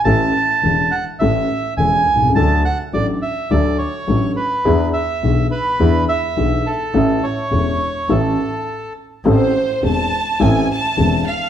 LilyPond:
<<
  \new Staff \with { instrumentName = "Violin section" } { \time 4/4 \key a \major \tempo 4 = 105 r1 | r1 | r1 | r1 |
\key a \minor c''4 a''4 gis''8 a''4 f''8 | }
  \new Staff \with { instrumentName = "Bandoneon" } { \time 4/4 \key a \major a''4. fis''8 e''4 gis''4 | a''8 fis''8 d''8 e''8 d''8 cis''4 b'8~ | b'8 e''4 b'4 e''4 a'8~ | a'8 cis''4. a'4. r8 |
\key a \minor r1 | }
  \new Staff \with { instrumentName = "Upright piano" } { \clef bass \time 4/4 \key a \major <a,, a, e a cis' a'>8 r8 <e,, e, e a cis' a'>8 r8 <a,, a, e a cis' a'>8 r8 <e,, e, e a cis' a'>8 r32 b,,32 c,32 cis,32 | <d, d fis a d' a'>8 r8 <a,, a, fis a d' a'>8 r8 <d, d fis a d' a'>8 r8 <a,, a, fis a d' a'>8 r8 | <e, e b d' gis'>8 r8 <b,, b, e b d' gis'>8 r8 <e, e b d' gis'>8 r8 <b,, b, e b d' gis'>8 r8 | <a,, a, e a cis' a'>8 r8 <e,, e, e a cis' a'>8 r8 <a,, a, e a cis' a'>8 r4. |
\key a \minor <a,, a, e a c' a'>8 r8 <e,, e, e a c' a'>8 r8 <a,, a, e a c' a'>8 r8 <e,, e, e a c' a'>8 r8 | }
  \new Staff \with { instrumentName = "Double bass" } { \clef bass \time 4/4 \key a \major a,,8 r8 e,,8 r8 a,,8 r8 e,,8 c,8 | d,8 r8 a,,8 r8 d,8 r8 a,,8 r8 | e,8 r8 b,,8 r8 e,8 r8 b,,8 r8 | a,,8 r8 e,,8 r8 a,,8 r4. |
\key a \minor a,,8 r8 e,,8 r8 a,,8 r8 e,,8 r8 | }
>>